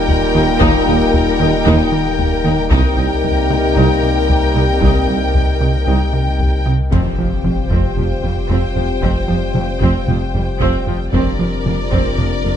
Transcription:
Already playing: sub bass D#1, trombone section A#2 G3, french horn section A#3 D#4, analog synth pad A#3 G4 A#4 D#5, violin section A#4 G5
0.08 analog synth bass D#2, taiko low
0.34 double bass section D#2, cello section D#2, tuba D#2, analog synth bass D#3, viola section D#4
0.61 double bass section D#2, analog synth bass D#2, tuba D#2, cello section D#2, viola section D#4, taiko
0.87 double bass section D#2, tuba D#2, analog synth bass D#2, cello section D#2, viola section D#4
1.13 analog synth bass D#2, taiko low
1.39 double bass section D#2, tuba D#2, cello section D#2, analog synth bass D#3, viola section D#4
1.66 analog synth bass D#2, tuba D#2, double bass section D#2, cello section D#2, viola section D#4
1.92 analog synth bass D#3
2.19 analog synth bass D#2, taiko low
2.44 tuba D#2, double bass section D#2, cello section D#2, analog synth bass D#3, viola section D#4
2.70 analog synth bass C2, double bass section C2, sub bass C2, tuba C2, cello section C2, trombone section C3 G3, french horn section A#3 D#4, analog synth pad C4 G4 A#4 D#5, viola section D#4, violin section A#4 G5, taiko
2.97 tuba C2, analog synth bass C2, double bass section C2, cello section C2, viola section D#4
3.24 analog synth bass C2, taiko low
3.50 tuba C2, cello section C2, double bass section C2, analog synth bass C3, viola section D#4
3.76 tuba C2, analog synth bass C2, double bass section C2, cello section C2, viola section D#4
4.03 analog synth bass C3
4.29 analog synth bass C2, taiko low
4.55 tuba C2, double bass section C2, cello section C2, analog synth bass C3, viola section D#4
4.81 analog synth bass C2, cello section C2, tuba C2, double bass section C2, viola section D#4, taiko
5.07 tuba C2, analog synth bass C2, double bass section C2, cello section C2, viola section D#4
5.34 analog synth bass C2, taiko low
5.60 tuba C2, double bass section C2, cello section C2, analog synth bass C3, viola section D#4
5.86 tuba C2, double bass section C2, cello section C2, analog synth bass C2, viola section D#4
6.13 analog synth bass C3
6.39 analog synth bass C2, taiko low
6.65 tuba C2, double bass section C2, cello section C2, analog synth bass C3, viola section D#4
6.91 double bass section F1, sub bass F1, analog synth bass F2, cello section F2, trombone section C3 G3, french horn section C4 F4, viola section C4, analog synth pad C4 G4 C5 F5, violin section C5 G5, taiko, impact
7.18 double bass section F1, cello section F2, analog synth bass F3, viola section F3
7.44 double bass section F1, cello section F2, analog synth bass F3, viola section G3, taiko mid
7.71 double bass section F1, analog synth bass F2, cello section F2, viola section C4, taiko
7.97 double bass section F1, analog synth bass F2, cello section F2, viola section F3, taiko mid
8.23 double bass section F1, analog synth bass F2, cello section F2, viola section G3
8.49 double bass section F1, analog synth bass F2, cello section F2, viola section C4, taiko
8.75 double bass section F1, analog synth bass F2, cello section F2, viola section F3
9.02 double bass section F1, analog synth bass F2, cello section F2, viola section C4, taiko
9.28 double bass section F1, cello section F2, analog synth bass F3, viola section F3
9.55 double bass section F1, cello section F2, analog synth bass F3, viola section G3, taiko mid
9.81 double bass section F1, analog synth bass F2, cello section F2, viola section C4, taiko
10.08 double bass section F1, analog synth bass F2, cello section F2, viola section F3, taiko mid
10.34 double bass section F1, analog synth bass F2, cello section F2, viola section G3
10.60 double bass section F1, analog synth bass F2, cello section F2, viola section C4, taiko
10.87 double bass section F1, analog synth bass F2, cello section F2, viola section F3
11.12 sub bass F1, double bass section F1, analog synth bass F2, cello section F2, trombone section C3, analog synth pad C4 F4 A#4 D5, viola section C4, french horn section D4, violin section A#4 D5, taiko
11.39 double bass section F1, cello section F2, analog synth bass F3, viola section F3
11.66 double bass section F1, cello section F2, analog synth bass F3, viola section A#3, taiko mid
11.92 double bass section F1, analog synth bass F2, cello section F2, viola section C4, taiko
12.18 double bass section F1, analog synth bass F2, cello section F2, trombone section F3, viola section F3, french horn section A#3, taiko mid
12.45 double bass section F1, analog synth bass F2, cello section F2, viola section A#3

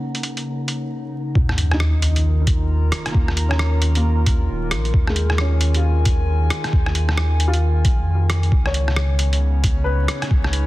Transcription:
Already playing: ambient pad C#3 C#4 D#4 C#5 F#5, synth texture A#3 A#5, upright piano C#4
0.15 closed hi-hat
0.23 closed hi-hat
0.37 closed hi-hat
0.68 closed hi-hat
1.35 sub bass D#2, ambient pad D#3, kick, sub drop
1.49 cross-stick
1.58 ambient pad F4, closed hi-hat
1.68 ambient pad A#4, cross-stick
1.74 upright piano D#4
1.80 cross-stick
2.02 ambient pad A#5, closed hi-hat
2.16 closed hi-hat
2.47 kick, closed hi-hat
2.92 cross-stick, closed hi-hat
3.06 cross-stick, closed hi-hat
3.12 sub bass D#2, upright piano A#3, kick
3.28 cross-stick
3.37 closed hi-hat
3.49 upright piano C#4, cross-stick
3.59 cross-stick
3.82 closed hi-hat
3.95 upright piano A#3, closed hi-hat
4.26 kick, closed hi-hat
4.49 sub bass D#1
4.71 sub bass A#1, cross-stick, closed hi-hat
4.85 ambient pad G#5, closed hi-hat
4.94 sub bass D#2, kick
5.07 upright piano G#3, cross-stick
5.16 closed hi-hat
5.30 cross-stick
5.38 upright piano C#4, cross-stick
5.61 closed hi-hat
5.74 upright piano F4, closed hi-hat
6.05 kick, closed hi-hat
6.50 cross-stick, closed hi-hat
6.64 cross-stick, closed hi-hat
6.73 sub bass D#2, kick
6.86 cross-stick
6.95 closed hi-hat
7.09 cross-stick
7.17 cross-stick
7.40 closed hi-hat
7.48 upright piano F4
7.54 closed hi-hat
7.85 sub bass A#1, kick, closed hi-hat
7.99 sub bass F2
8.30 cross-stick, closed hi-hat
8.43 closed hi-hat
8.52 sub bass C#2, ambient pad C#3, kick
8.66 upright piano C#5, cross-stick
8.74 ambient pad B3 C#4, closed hi-hat
8.88 cross-stick
8.96 ambient pad C#5, cross-stick
9.17 ambient pad D#4, closed hi-hat
9.33 closed hi-hat
9.64 kick, closed hi-hat
9.84 upright piano B4
10.08 cross-stick, closed hi-hat
10.22 cross-stick, closed hi-hat
10.31 sub bass C#2, kick
10.44 cross-stick
10.53 closed hi-hat

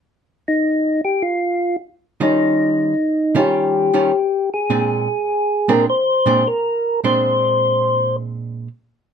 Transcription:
0.48 tonewheel organ D#4
1.05 tonewheel organ G4
1.22 tonewheel organ F4
2.20 hollow-body jazz guitar D#3 G3 C#4 F4, tonewheel organ D#4
3.35 hollow-body jazz guitar D#3 G3 C#4 F4, tonewheel organ G4
3.93 hollow-body jazz guitar D#3 G3 C#4 F4
4.54 tonewheel organ G#4
4.70 hollow-body jazz guitar A#2 G#3 C4 D4
5.68 hollow-body jazz guitar A#2 G#3 C4 D4, tonewheel organ A#4
5.90 tonewheel organ C5
6.26 hollow-body jazz guitar A#2 G#3 C4 D4
6.47 tonewheel organ A#4
7.04 hollow-body jazz guitar A#2 G#3 C4 D4, tonewheel organ C5

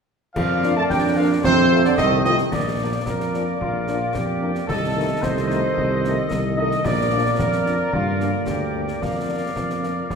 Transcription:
0.35 tuba F2, euphonium F3, woodwind section A#4 D5, trumpet section F5, concert bass drum, crash
0.63 french horn section A#3 D4 F4, snare
0.76 euphonium A3, trumpet section A5
0.89 tuba F2, euphonium G3, trombone section D4, trumpet section G5, concert bass drum, snare
1.16 euphonium F3, french horn section A#3 D4 F4, trumpet section F5
1.43 tuba F2, euphonium C3, trombone section C4, woodwind section A4 C5, trumpet section C5, concert bass drum, snare
1.71 french horn section A3 C4 F4
1.85 euphonium D3, trumpet section D5, snare
1.97 tuba C2, euphonium D#3, trombone section A3, woodwind section A4 C5, trumpet section D#5, concert bass drum, snare
2.24 french horn section A3 C4 F4, trumpet section D#5, snare
2.38 snare
2.51 tuba A#1, trombone section F3 A#3, woodwind section A#4 D5, trumpet section D5, concert bass drum, snare, crash
2.80 french horn section F3 A#3 D4
3.06 tuba F2, trumpet section A#4, concert bass drum, snare
3.20 snare
3.34 french horn section F3 A#3 D4, snare
3.60 tuba A#1, trumpet section F4, concert bass drum
3.88 french horn section F3 A#3 D4, snare
4.14 tuba F2, trumpet section G4, concert bass drum, snare
4.42 french horn section F3 A#3 D4
4.55 snare
4.67 tuba C2, trombone section D#3 A3, woodwind section A4 D#5, trumpet section A4, concert bass drum, snare
4.97 french horn section D#3 A3 D#4
5.22 tuba C2, trumpet section C5, concert bass drum, snare
5.37 snare
5.47 french horn section D#3 A3 D#4, trumpet section C5, snare
5.77 tuba C2, concert bass drum
6.04 french horn section D#3 A3 D#4, snare
6.31 tuba C2, concert bass drum, snare
6.56 french horn section D#3 A3 D#4, trumpet section D#5
6.71 snare
6.85 tuba A#1, trombone section F3 A#3, woodwind section A#4 D5, trumpet section D5, concert bass drum, snare, crash
7.12 french horn section F3 A#3 D4
7.39 tuba F2, trumpet section A#4, concert bass drum, snare
7.53 snare
7.66 french horn section F3 A#3 D4, snare
7.93 tuba G2, trombone section D3, trumpet section F4, concert bass drum
8.20 french horn section G3 A#3 D4, snare
8.47 tuba D2, trumpet section G4, concert bass drum, snare
8.75 french horn section G3 A#3 D4
8.88 snare
9.01 tuba F2, trombone section F3 A#3, woodwind section A#4 F5, trumpet section D5, concert bass drum, snare
9.29 french horn section A#3 D4
9.56 tuba F2, concert bass drum, snare
9.70 snare
9.83 french horn section A#3 D4, snare
10.10 tuba F2, trombone section A3, woodwind section A4, concert bass drum, snare

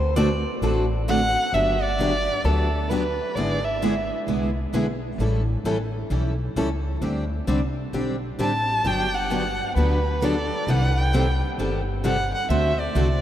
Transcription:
Already playing: upright bass D2, steel-string acoustic guitar C5
0.16 steel-string acoustic guitar D3 A3 C4 F#4 A4 D5
0.61 upright bass A1, steel-string acoustic guitar D3 A3 C4 F#4 A4
1.08 steel-string acoustic guitar D3 A3 C4 F#4 A4, violin F#5
1.53 upright bass G1, steel-string acoustic guitar D3 F#3 B3 D4 G4, violin E5
1.82 violin D5
1.99 steel-string acoustic guitar D3 F#3 B3 D4 G4
2.44 upright bass D2, steel-string acoustic guitar D3 F#3 B3 D4 G4, violin A4
2.89 steel-string acoustic guitar D3 F#3 B3 D4 G4, violin B4
3.35 upright bass G#1, steel-string acoustic guitar D3 G#3 B3 E4 G#4, violin D5
3.65 violin E5
3.82 steel-string acoustic guitar D3 G#3 B3 E4 G#4
4.27 upright bass C2, steel-string acoustic guitar D3 G#3 B3 E4 G#4
4.73 upright bass B1, steel-string acoustic guitar D3 G#3 B3 E4 G#4
5.18 upright bass A1, steel-string acoustic guitar E3 G3 C#4 E4 A4
5.64 upright bass A1, steel-string acoustic guitar E3 G3 C#4 E4 A4
6.10 upright bass B1, steel-string acoustic guitar E3 G3 C#4 E4 A4
6.56 upright bass C#2, steel-string acoustic guitar E3 G3 C#4 E4 A4
7.01 upright bass D2, steel-string acoustic guitar D3 G3 C4 D4 G4
7.47 upright bass C2, steel-string acoustic guitar D3 G3 C4 D4 G4
7.93 upright bass B1, steel-string acoustic guitar D3 G3 C4 D4 G4
8.38 upright bass A1, steel-string acoustic guitar D3 G3 C4 D4 G4, violin A5
8.84 upright bass G1, steel-string acoustic guitar D3 F#3 B3 D4 G4, violin G5
9.15 violin F#5
9.30 steel-string acoustic guitar D3 F#3 B3 D4 G4
9.76 upright bass D2, steel-string acoustic guitar D3 F#3 B3 D4 G4, violin B4
10.22 steel-string acoustic guitar D3 F#3 B3 D4 G4 A4, violin D5
10.67 upright bass C2, steel-string acoustic guitar C3 D#3 G3 C4 G4 A4 B4, violin F#5
10.98 violin G5
11.13 steel-string acoustic guitar C3 D#3 G3 C4 G4 A4
11.58 upright bass G1, steel-string acoustic guitar C3 D#3 G3 C4 G4 A4
12.04 steel-string acoustic guitar C3 D#3 G3 C4 G4 A4, violin F#5
12.34 violin F#5
12.49 upright bass D2, steel-string acoustic guitar D3 A3 C4 F#4 A4 C5, violin E5
12.80 violin D5
12.95 upright bass C2, steel-string acoustic guitar D3 A3 C4 F#4 A4

